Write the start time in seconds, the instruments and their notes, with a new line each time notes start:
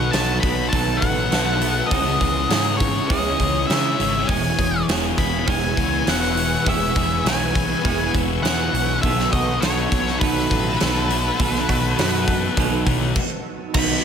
Already playing: distorted electric guitar B2 F#3 B3, overdriven electric guitar B2 D#3 F#3 B3 D#4 A4, clean electric guitar F#4, ambient pad B4 F#5 A5 E6, lead electric guitar F#5
0.11 picked electric bass B1, distorted electric guitar B2 F#3, overdriven electric guitar F#3 B3 D#4, lead electric guitar A5, snare, open hi-hat
0.15 distorted electric guitar B3, overdriven electric guitar A4
0.40 picked electric bass B1, distorted electric guitar B3, lead electric guitar B5, kick, open hi-hat
0.44 distorted electric guitar F#3
0.69 picked electric bass B1, distorted electric guitar B2 F#3, overdriven electric guitar B2 D#3, lead electric guitar A5, kick, open hi-hat
0.73 overdriven electric guitar F#3 B3 D#4 A4, clean electric guitar A3, distorted electric guitar B3
0.97 lead electric guitar F#5
1.01 picked electric bass A1, distorted electric guitar F#3 B3, kick, open hi-hat
1.31 picked electric bass B1, distorted electric guitar B2 F#3 B3, overdriven electric guitar F#3 B3 D#4 A4, snare, open hi-hat
1.60 distorted electric guitar F#3 B3, clean electric guitar A3, open hi-hat
1.87 overdriven electric guitar C#3, distorted electric guitar C#3, lead electric guitar D#5
1.91 picked electric bass C#2, clean electric guitar E3, overdriven electric guitar G#3 C#4 E4 G#4, distorted electric guitar G#3 C#4, ambient pad C#5 G#5 D#6, kick, open hi-hat
2.20 picked electric bass C#2, distorted electric guitar G#3 C#4, clean electric guitar G#4, kick, open hi-hat
2.49 picked electric bass G#2, distorted electric guitar C#3 G#3 C#4, overdriven electric guitar G#3 C#4 E4 G#4, snare, open hi-hat
2.77 clean electric guitar E3, distorted electric guitar C#4, lead electric guitar C#5, kick, open hi-hat
2.82 distorted electric guitar G#3
3.07 picked electric bass C#2, overdriven electric guitar C#3 G#3 C#4 E4 G#4, distorted electric guitar C#3 G#3, clean electric guitar G#3, lead electric guitar D#5, kick, open hi-hat
3.12 distorted electric guitar C#4
3.39 picked electric bass C#2, clean electric guitar E3, distorted electric guitar G#3 C#4, kick, open hi-hat
3.67 distorted electric guitar C#3 G#3 C#4, picked electric bass C#3, overdriven electric guitar G#3 C#4 E4, lead electric guitar E5, snare, open hi-hat
3.71 overdriven electric guitar G#4
3.99 picked electric bass G#1, clean electric guitar G#3, distorted electric guitar G#3 C#4, open hi-hat
4.27 picked electric bass E1, distorted electric guitar E2 B2 E3, overdriven electric guitar E3 G#3 B3 E4 G#4, clean electric guitar E3, ambient pad B4 C#6 E6, lead electric guitar G#5, kick, open hi-hat
4.58 picked electric bass E1, distorted electric guitar B2 E3, clean electric guitar G#4, kick, open hi-hat
4.87 picked electric bass E1, distorted electric guitar E2 B2 E3, overdriven electric guitar G#3 B3 E4 G#4, clean electric guitar C#4, snare, open hi-hat
5.17 picked electric bass E1, distorted electric guitar B2 E3, clean electric guitar E3, lead electric guitar B5, kick, open hi-hat
5.46 picked electric bass E1, distorted electric guitar E2 B2 E3, overdriven electric guitar E3 G#3 B3 E4 G#4, clean electric guitar B3, kick, open hi-hat
5.50 lead electric guitar G#5
5.76 picked electric bass C#2, distorted electric guitar B2 E3, clean electric guitar E3, kick, open hi-hat
6.06 picked electric bass E1, distorted electric guitar E2 B2 E3, overdriven electric guitar G#3 B3 E4 G#4, clean electric guitar C#4, lead electric guitar F#5, snare, open hi-hat
6.36 distorted electric guitar B2 E3, clean electric guitar B3, open hi-hat
6.65 picked electric bass E1, distorted electric guitar E2 B2 E3, overdriven electric guitar E3 G#3 B3 E4 G#4, clean electric guitar E3, kick, open hi-hat
6.69 lead electric guitar E5
6.95 picked electric bass E1, distorted electric guitar B2 E3, clean electric guitar G#4, kick, open hi-hat
7.24 picked electric bass B1, distorted electric guitar E2 B2 E3, overdriven electric guitar G#3 B3 E4 G#4, clean electric guitar C#4, lead electric guitar G#5, snare, open hi-hat
7.55 distorted electric guitar B2 E3, clean electric guitar E3, kick, open hi-hat
7.83 picked electric bass E1, distorted electric guitar E2 B2 E3, overdriven electric guitar E3 G#3 B3 E4 G#4, clean electric guitar B3, kick, open hi-hat
8.14 picked electric bass E1, distorted electric guitar B2 E3, clean electric guitar E3, kick, open hi-hat
8.42 distorted electric guitar E2 B2 E3, picked electric bass E2, overdriven electric guitar G#3 B3 E4 G#4, clean electric guitar C#4, lead electric guitar F#5, snare, open hi-hat
8.73 picked electric bass B1, distorted electric guitar B2 E3, clean electric guitar B3, open hi-hat
9.02 picked electric bass B1, distorted electric guitar B2 F#3 B3, overdriven electric guitar B2 D#3 F#3 B3 D#4 A4, lead electric guitar E5, ambient pad F#5 A5 E6, kick, open hi-hat
9.19 snare
9.32 picked electric bass B1, distorted electric guitar F#3 B3, clean electric guitar F#4, lead electric guitar D#5, kick, open hi-hat
9.60 picked electric bass B1, distorted electric guitar B2 F#3 B3, overdriven electric guitar F#3 B3 D#4 A4, lead electric guitar C#5, snare, open hi-hat
9.91 picked electric bass B1, distorted electric guitar F#3 B3, kick, open hi-hat
10.08 snare
10.20 picked electric bass B1, distorted electric guitar B2 F#3 B3, overdriven electric guitar B2 D#3 F#3 B3 D#4 A4, clean electric guitar A3, lead electric guitar B4, kick, open hi-hat
10.50 picked electric bass A1, distorted electric guitar F#3 B3, kick, open hi-hat
10.79 picked electric bass B1, distorted electric guitar B2 F#3 B3, overdriven electric guitar F#3 B3 D#4 A4, snare, open hi-hat
11.08 distorted electric guitar F#3 B3, clean electric guitar A3, open hi-hat
11.38 picked electric bass B1, distorted electric guitar B2 F#3 B3, overdriven electric guitar B2 D#3 F#3 B3 D#4 A4, kick, open hi-hat
11.56 snare
11.68 picked electric bass B1, distorted electric guitar F#3 B3, clean electric guitar F#4, kick, open hi-hat
11.97 picked electric bass F#2, distorted electric guitar B2 F#3 B3, overdriven electric guitar F#3 B3 D#4 A4, snare, open hi-hat
12.26 distorted electric guitar F#3 B3, kick, open hi-hat
12.56 picked electric bass B1, distorted electric guitar B2 F#3 B3, overdriven electric guitar B2 D#3 F#3 B3 D#4 A4, clean electric guitar A3, kick, open hi-hat
12.85 picked electric bass B1, clean electric guitar E3, distorted electric guitar F#3 B3, kick, open hi-hat
13.15 kick, crash
13.74 picked electric bass B1, overdriven electric guitar B2 D#3 F#3 B3 D#4, distorted electric guitar B2 F#3 B3, clean electric guitar D#3, ambient pad B4 D#5 F#5, lead electric guitar B5, kick, crash